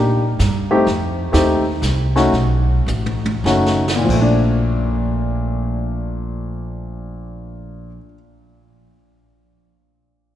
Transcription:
0.00 0.38 A#2 medium
0.00 0.21 A#3 soft
0.00 0.21 D4 soft
0.00 0.22 D#4 soft
0.00 0.21 G4 medium
0.39 0.85 G2 medium
0.39 snare medium
0.39 hi-hat pedal soft
0.71 0.85 A3 medium
0.71 0.85 C4 medium
0.71 0.85 D#4 medium
0.71 0.85 G4 medium
0.87 1.32 F2 medium
0.87 brush sweep soft
0.87 snare soft
1.32 1.81 D#2 medium
1.32 1.62 A3 medium
1.32 1.63 C4 medium
1.32 1.63 D#4 medium
1.32 1.62 G4 medium
1.32 snare medium
1.32 hi-hat pedal medium
1.82 2.31 C2 medium
1.82 snare medium
1.82 hi-hat pedal medium
2.16 2.31 A3 medium
2.16 2.31 C#4 medium
2.16 2.31 D#4 medium
2.16 2.32 F#4 medium
2.16 snare soft
2.33 2.85 B1 medium
2.33 brush sweep soft
2.33 snare soft
2.86 3.43 A1 medium
2.86 hi-hat pedal medium
2.86 high tom soft
3.06 high tom soft
3.25 high tom medium
3.44 4.06 F#1 medium
3.44 3.83 A3 medium
3.44 3.83 C#4 medium
3.44 3.83 D#4 medium
3.44 3.83 F#4 medium
3.44 snare medium
3.66 snare medium
3.88 snare medium
3.96 7.89 A#2 medium
4.04 7.97 F3 medium
4.09 7.97 A#1 medium
4.09 8.05 A3 medium
4.09 kick soft
4.09 crash medium
4.21 8.14 D4 medium

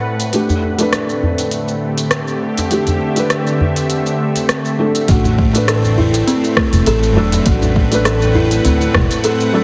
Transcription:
0.00 0.33 A2 medium
0.00 0.29 A3 medium
0.00 9.64 A3 medium
0.00 9.64 C4 medium
0.00 0.30 D4 medium
0.00 0.31 B4 medium
0.00 1.46 B4 medium
0.00 1.45 F#5 medium
0.20 closed hi-hat soft
0.20 shaker medium
0.33 5.08 D3 medium
0.33 0.75 A3 medium
0.33 0.76 D4 medium
0.33 0.76 G4 medium
0.33 closed hi-hat soft
0.33 shaker medium
0.49 djembe tone medium
0.49 djembe bass medium
0.49 shaker soft
0.62 djembe slap soft
0.62 djembe tone medium
0.78 2.67 A3 medium
0.78 2.68 D4 medium
0.78 2.69 B4 medium
0.78 closed hi-hat soft
0.78 shaker medium
0.89 6.97 E5 medium
0.89 cross-stick medium
0.89 closed hi-hat soft
0.89 shaker soft
1.09 shaker soft
1.21 5.09 G4 medium
1.21 djembe bass medium
1.38 closed hi-hat soft
1.38 djembe slap soft
1.38 djembe tone soft
1.38 shaker medium
1.51 closed hi-hat soft
1.51 shaker soft
1.68 shaker soft
1.98 closed hi-hat soft
1.98 shaker medium
2.11 cross-stick medium
2.11 closed hi-hat soft
2.11 shaker medium
2.28 shaker soft
2.58 closed hi-hat soft
2.58 djembe slap medium
2.58 djembe tone medium
2.58 shaker medium
2.71 3.13 A3 medium
2.71 3.13 D4 medium
2.71 3.14 G4 medium
2.71 closed hi-hat soft
2.71 shaker soft
2.87 closed hi-hat soft
2.87 djembe tone medium
2.87 djembe bass medium
2.87 shaker soft
3.01 djembe slap soft
3.01 djembe tone soft
3.15 4.75 A3 medium
3.15 4.76 D4 medium
3.15 closed hi-hat soft
3.15 shaker medium
3.19 4.77 B4 medium
3.30 cross-stick medium
3.30 closed hi-hat soft
3.30 shaker soft
3.47 shaker soft
3.61 djembe bass medium
3.76 closed hi-hat soft
3.76 djembe slap soft
3.76 djembe tone soft
3.76 shaker medium
3.90 closed hi-hat soft
3.90 shaker soft
4.06 shaker soft
4.35 closed hi-hat soft
4.35 djembe slap soft
4.35 shaker medium
4.49 cross-stick medium
4.49 closed hi-hat soft
4.49 shaker medium
4.65 shaker soft
4.78 5.05 A3 medium
4.78 5.06 D4 medium
4.78 5.06 A4 medium
4.95 closed hi-hat soft
4.95 shaker medium
5.08 6.20 A1 medium
5.08 9.64 A2 medium
5.08 5.51 A3 medium
5.08 5.18 A3 medium
5.08 5.51 D4 medium
5.08 5.52 F#4 medium
5.08 kick loud
5.08 closed hi-hat medium
5.08 shaker medium
5.24 djembe bass medium
5.24 shaker soft
5.38 5.67 A3 medium
5.38 kick loud
5.38 djembe slap soft
5.38 djembe tone medium
5.53 7.13 A3 medium
5.53 7.14 D4 medium
5.53 closed hi-hat soft
5.53 shaker medium
5.57 7.15 B4 medium
5.68 5.96 A4 loud
5.68 cross-stick medium
5.68 closed hi-hat medium
5.68 shaker medium
5.84 djembe tone medium
5.84 shaker soft
5.89 9.64 B4 medium
5.98 6.26 E4 medium
5.98 djembe bass medium
6.13 closed hi-hat soft
6.13 djembe slap medium
6.13 djembe tone soft
6.13 shaker medium
6.27 6.37 C4 medium
6.27 closed hi-hat medium
6.27 shaker medium
6.44 shaker soft
6.57 6.66 A3 medium
6.57 kick medium
6.57 cross-stick medium
6.57 djembe tone medium
6.70 6.82 E1 medium
6.70 9.64 F#5 medium
6.70 closed hi-hat soft
6.70 shaker medium
6.86 7.17 A1 medium
6.86 7.15 A4 loud
6.86 closed hi-hat medium
6.86 shaker medium
7.03 shaker soft
7.15 7.37 E1 loud
7.15 7.45 F#3 medium
7.15 7.42 A3 medium
7.15 7.43 D4 medium
7.15 7.44 A4 loud
7.32 closed hi-hat soft
7.32 djembe slap medium
7.32 djembe tone medium
7.32 shaker medium
7.45 8.57 A1 medium
7.45 7.88 A3 medium
7.45 7.56 A3 medium
7.45 7.88 D4 medium
7.45 7.89 F#4 medium
7.45 kick loud
7.45 closed hi-hat medium
7.45 shaker medium
7.62 djembe bass loud
7.62 shaker soft
7.76 8.04 A3 medium
7.76 kick loud
7.76 djembe slap medium
7.76 djembe tone medium
7.90 9.51 A3 medium
7.90 9.52 D4 medium
7.90 9.52 B4 loud
7.90 closed hi-hat soft
7.90 shaker medium
8.05 8.34 A4 loud
8.05 cross-stick medium
8.05 closed hi-hat medium
8.05 shaker medium
8.22 djembe tone medium
8.22 shaker soft
8.35 8.63 E4 medium
8.35 djembe bass medium
8.51 closed hi-hat soft
8.51 djembe slap soft
8.51 shaker medium
8.65 8.85 D2 medium
8.65 8.74 C4 medium
8.65 closed hi-hat medium
8.65 shaker medium
8.81 shaker soft
8.94 9.05 E1 medium
8.94 9.04 A3 loud
8.94 kick loud
8.94 cross-stick medium
8.94 djembe bass medium
9.11 closed hi-hat soft
9.11 djembe slap medium
9.11 shaker medium
9.24 9.53 A4 loud
9.24 closed hi-hat medium
9.24 shaker medium
9.40 shaker soft
9.53 9.64 F#3 medium
9.53 9.64 A3 medium
9.53 9.64 D4 medium
9.53 9.64 A4 loud

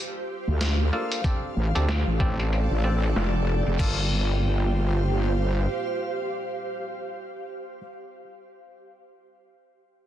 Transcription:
0.00 1.22 G4 medium
0.00 2.18 G4 medium
0.00 2.27 C5 medium
0.00 2.27 F5 medium
0.00 3.76 F5 medium
0.47 0.90 D2 medium
0.61 snare loud
0.61 closed hi-hat medium
0.93 1.21 A#3 medium
0.93 1.21 D4 medium
0.93 1.21 F4 medium
0.93 1.21 A4 medium
1.12 closed hi-hat medium
1.24 1.55 C4 medium
1.24 1.55 D4 medium
1.24 1.55 G4 medium
1.24 3.79 A4 medium
1.24 1.55 A4 medium
1.24 kick loud
1.24 closed hi-hat soft
1.56 1.72 A1 medium
1.64 3.79 D5 medium
1.75 2.04 D2 medium
1.75 1.92 C4 medium
1.75 1.92 D4 medium
1.75 1.91 G4 medium
1.75 1.92 A4 medium
1.75 closed hi-hat medium
1.89 snare loud
1.89 closed hi-hat soft
2.07 2.68 A1 medium
2.20 2.81 C4 medium
2.20 2.81 D4 medium
2.20 2.81 G4 medium
2.20 2.81 A4 loud
2.20 kick loud
2.40 3.80 G5 medium
2.40 closed hi-hat medium
2.53 closed hi-hat soft
2.71 3.13 A1 medium
2.84 3.76 C4 medium
2.84 3.76 D4 medium
2.84 3.76 G4 medium
2.84 3.76 A4 medium
3.03 closed hi-hat medium
3.16 3.63 F1 medium
3.16 snare loud
3.16 closed hi-hat soft
3.66 3.77 F1 medium
3.66 closed hi-hat medium
3.79 5.67 G1 medium
3.79 7.11 A#3 medium
3.79 7.81 A#3 medium
3.79 7.81 D4 medium
3.79 7.11 F4 medium
3.79 7.81 F4 medium
3.79 7.11 G4 medium
3.79 7.81 A4 medium
3.79 7.11 G5 medium
3.79 kick loud
3.79 crash medium
3.91 7.11 C5 medium
4.02 7.11 F5 medium

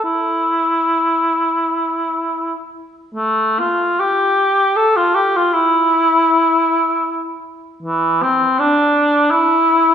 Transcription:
0.04 2.53 E4 soft
3.15 3.61 A3 soft
3.60 4.01 F4 medium
4.00 4.78 G4 soft
4.77 4.98 A4 medium
4.97 5.16 F4 soft
5.15 5.38 G4 medium
5.37 5.55 F4 soft
5.54 7.43 E4 medium
7.83 8.24 E3 soft
8.22 8.61 C4 medium
8.59 9.33 D4 medium
9.31 9.95 E4 medium

